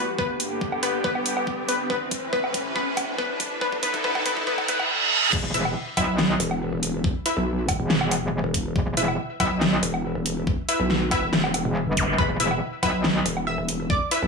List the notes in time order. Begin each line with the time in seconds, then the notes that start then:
Already playing: E2 E3 G3 B3 F#4 B4, riser
0.18 G2 D3 B3 G4 B4, kick
0.40 closed hi-hat
0.61 kick
0.72 low woodblock
0.83 B3 B4, closed hi-hat
1.04 B3 B4, kick
1.15 low woodblock
1.26 closed hi-hat
1.37 low woodblock
1.47 kick
1.69 B3 B4, closed hi-hat
1.90 A2 C3 E3 B3 B4, kick
2.11 kick, closed hi-hat
2.33 B3 B4, kick
2.44 low woodblock
2.54 kick, closed hi-hat
2.76 B3 B4, kick
2.97 kick, closed hi-hat, low woodblock
3.18 B3 B4, kick
3.40 kick, closed hi-hat
3.61 D2 D3 B3 E4 A4 B4, kick
3.72 kick
3.83 B3 B4, kick, closed hi-hat
3.94 kick, closed hi-hat
4.04 B3 B4, kick
4.15 kick, low woodblock
4.26 B3 B4, kick, closed hi-hat
4.37 kick
4.47 B3 B4, kick, reverse cymbal
4.58 kick, low woodblock
4.68 B3 B4, kick, closed hi-hat
4.80 kick, low woodblock
5.33 E1, kick, crash
5.54 E1 E4 B4 E5, closed hi-hat
5.65 low woodblock
5.97 B1 E4 B4 E5, kick, closed hi-hat, low woodblock
6.18 snare
6.40 E1, closed hi-hat
6.51 low woodblock
6.72 E1
6.83 closed hi-hat
7.04 kick
7.26 E4 B4 E5, closed hi-hat
7.37 B1
7.69 kick, closed hi-hat, low woodblock
7.80 E1
7.90 snare
8.01 low woodblock
8.11 closed hi-hat, low woodblock
8.22 E1
8.44 E1
8.54 kick, closed hi-hat
8.76 E1, kick
8.97 E1 E4 B4 E5, closed hi-hat
9.08 low woodblock
9.40 B1 E4 B4 E5, kick, closed hi-hat, low woodblock
9.61 snare
9.83 E1, closed hi-hat
9.94 low woodblock
10.15 E1
10.26 closed hi-hat
10.47 kick
10.69 E4 B4 E5, closed hi-hat
10.80 B1
10.90 snare
11.11 E4 B4 E5, kick, closed hi-hat, low woodblock
11.22 E1
11.33 snare
11.44 low woodblock
11.54 closed hi-hat, low woodblock
11.65 E1
11.87 G1
11.97 kick, closed hi-hat, zap
12.18 E1 B4 B5, kick
12.40 E1 E4 B4 E5, closed hi-hat
12.51 low woodblock
12.83 B1 E4 B4 E5 B5, kick, closed hi-hat, low woodblock
13.04 snare
13.26 E1, closed hi-hat
13.37 low woodblock
13.47 E5 E6
13.58 E1
13.69 closed hi-hat
13.90 D5 D6, kick
14.11 E4 B4 E5, closed hi-hat
14.22 B1